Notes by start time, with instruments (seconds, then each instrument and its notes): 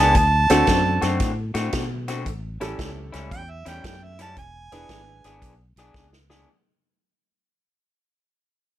Already playing: fingered electric bass C#2, clean electric guitar E3 B3 D4 G#4
0.00 harmonica A5
0.15 fingered electric bass D2, harmonica A5, kick, closed hi-hat
0.50 fingered electric bass D2, clean electric guitar D3 A3 C4 F#4, upright piano C4 D4 F#4 A4, snare, closed hi-hat
0.67 fingered electric bass F#2, kick, snare, closed hi-hat
1.02 fingered electric bass F#2, clean electric guitar D3 A3 C4 F#4, snare, closed hi-hat
1.20 fingered electric bass A2, kick, snare, closed hi-hat
1.54 fingered electric bass A2, clean electric guitar D3 A3 C4 F#4, snare, closed hi-hat
1.73 fingered electric bass B2, kick, snare, closed hi-hat
2.08 clean electric guitar D3 A3 C4 F#4, snare, closed hi-hat
2.26 fingered electric bass A1, kick, closed hi-hat
2.60 fingered electric bass A1, clean electric guitar A2 G3 C#4 E4, upright piano C#4 E4 G4 A4, snare, closed hi-hat
2.79 fingered electric bass C#2, kick, snare, closed hi-hat
3.12 fingered electric bass C#2, clean electric guitar A2 G3 C#4 E4, snare, closed hi-hat
3.31 fingered electric bass E2, harmonica G5, kick, closed hi-hat
3.51 harmonica E5
3.65 fingered electric bass E2, clean electric guitar A2 G3 C#4 E4, harmonica G5, snare, closed hi-hat
3.84 fingered electric bass F#2, harmonica G5, kick, snare, closed hi-hat
4.04 harmonica E5
4.19 clean electric guitar A2 G3 C#4 E4, harmonica A5, snare, closed hi-hat
4.37 fingered electric bass E1, harmonica G#5, kick, closed hi-hat
4.72 fingered electric bass E1, clean electric guitar E3 B3 D4 G#4, upright piano D4 E4 G#4 B4, snare, closed hi-hat
4.89 fingered electric bass G#1, kick, snare, closed hi-hat
5.24 clean electric guitar E3 B3 D4 G#4, snare, closed hi-hat
5.42 fingered electric bass B1, kick, closed hi-hat
5.76 fingered electric bass B1, clean electric guitar E3 B3 D4 G#4, snare, closed hi-hat
5.94 kick, snare
6.13 snare
6.30 clean electric guitar E3 B3 D4 G#4, snare